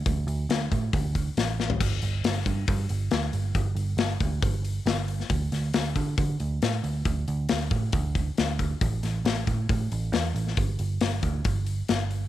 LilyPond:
<<
  \new Staff \with { instrumentName = "Picked electric bass" } { \clef bass \time 4/4 \key g \major \tempo 4 = 137 d,8 d,8 d,8 a,8 d,4 a,,4 | g,,8 g,,8 g,,8 g,8 g,8 g,,8 d,8 g,,8 | g,,8 g,,8 g,,8 d,8 g,,4 g,,4 | d,8 d,8 d,8 d8 d8 d,8 a,8 d,8 |
d,8 d,8 d,8 a,8 d,4 d,4 | a,,8 a,,8 a,,8 a,8 a,8 a,,8 e,8 a,,8 | g,,8 g,,8 g,,8 d,8 g,,4 g,,4 | }
  \new DrumStaff \with { instrumentName = "Drums" } \drummode { \time 4/4 <hho bd>8 hho8 <hho sn>8 <hho bd>8 <hho bd>8 <hho bd>8 <hho sn>8 sn16 tomfh16 | <cymc hho bd>8 hho8 <hho sn>8 <hho bd>8 <hho bd>8 hho8 <hho sn>8 hho8 | <hho bd>8 hho8 <hho sn>8 <hho bd>8 <hho bd>8 hho8 <hho sn>8 hho16 sn16 | <hho bd>8 <hho sn>8 <hho sn>8 <hho bd>8 <hho bd>8 hho8 <hho sn>8 hho8 |
<hho bd>8 hho8 <hho sn>8 <hho bd>8 <hho bd>8 <hho bd>8 <hho sn>8 <hho bd>8 | <hho bd>8 <hho sn>8 <hho sn>8 <hho bd>8 <hho bd>8 hho8 <hho sn>8 hho16 sn16 | <hho bd>8 hho8 <hho sn>8 <hho bd>8 <hho bd>8 hho8 <hho sn>8 hho8 | }
>>